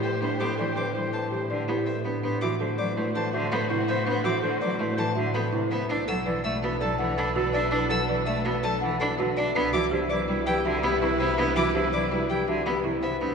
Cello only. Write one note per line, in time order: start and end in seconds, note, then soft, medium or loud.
0.22 0.36 B3 medium
0.40 0.54 B3 medium
0.59 0.73 E3 medium
0.77 0.91 D3 medium
0.95 1.09 G3 medium
1.31 1.45 E3 medium
1.50 1.64 D3 loud
1.68 1.82 B3 medium
2.05 2.19 B3 medium
2.23 2.37 B3 medium
2.43 2.56 E3 medium
2.60 2.74 D3 medium
2.79 2.92 F#3 medium
2.97 3.11 A3 medium
3.15 3.29 E3 medium
3.33 3.47 D3 loud
3.52 3.65 B3 medium
3.70 3.84 C3 medium
3.88 4.02 B3 medium
4.07 4.20 B3 loud
4.24 4.38 E3 medium
4.43 4.57 D3 medium
4.62 4.75 F#3 loud
4.80 4.93 A3 medium
4.98 5.12 E3 medium
5.17 5.30 D3 loud
5.35 5.48 B3 medium
5.53 5.67 C3 medium
5.71 5.85 B3 medium
5.89 6.03 D4 loud
6.08 6.22 F#3 medium
6.26 6.40 E3 medium
6.45 6.58 A3 medium
6.64 6.77 B3 medium
6.82 6.95 F#3 medium
7.00 7.13 E3 loud
7.18 7.31 D4 medium
7.35 7.49 D3 medium
7.54 7.67 D4 loud
7.71 7.85 D4 loud
7.90 8.04 F#3 medium
8.08 8.22 E3 medium
8.26 8.40 A3 loud
8.45 8.59 B3 medium
8.63 8.77 F#3 medium
8.82 8.96 E3 loud
9.01 9.14 D4 medium
9.19 9.33 D3 medium
9.37 9.51 D4 loud
9.56 9.69 B3 loud
9.74 9.88 E3 medium
9.93 10.06 D3 medium
10.10 10.24 F#3 medium
10.29 10.42 G3 medium
10.47 10.60 E3 medium
10.65 10.79 D3 loud
10.84 10.97 B3 medium
11.02 11.15 C3 medium
11.20 11.34 B3 loud
11.38 11.52 B3 loud
11.56 11.70 E3 loud
11.75 11.88 D3 medium
11.93 12.06 F#3 medium
12.11 12.25 G3 medium
12.30 12.43 E3 medium
12.48 12.61 D3 loud
12.66 12.80 B3 medium
12.84 12.98 C3 medium
13.02 13.16 B3 medium
13.21 13.35 B3 loud